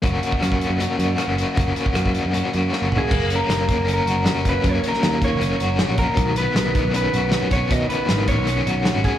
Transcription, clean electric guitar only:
X:1
M:4/4
L:1/8
Q:1/4=157
K:F#
V:1 name="Clean electric guitar"
z8 | z6 z G- | G A3 A3 B | c A2 c4 A- |
A B3 B3 c | d B2 c4 G |]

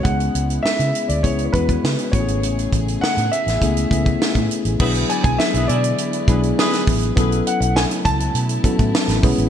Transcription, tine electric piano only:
X:1
M:4/4
L:1/8
Q:1/4=101
K:A
V:1 name="Tine electric piano"
[G,B,CEG]3 z [G,B,CEG] [G,B,CEF]2 [A,B,CEFG]- | [A,B,CEFG]2 z2 [A,B,CEG] [A,B,CEG]2 z | [F,B,DEG]3 z2 [F,B,DEG]2 z | [F,B,CEA]3 z2 [F,B,CEA]2 [G,B,CEG] |]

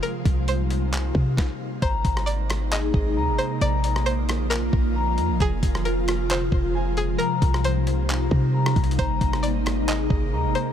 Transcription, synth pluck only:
X:1
M:4/4
L:1/8
Q:1/4=134
K:Ablyd
V:1 name="Synth pluck"
B2 c4 z2 | c2 d2 e3 c | d2 c2 B2 z2 | A2 B2 c3 A |
B2 c4 z2 | c2 d2 e3 c |]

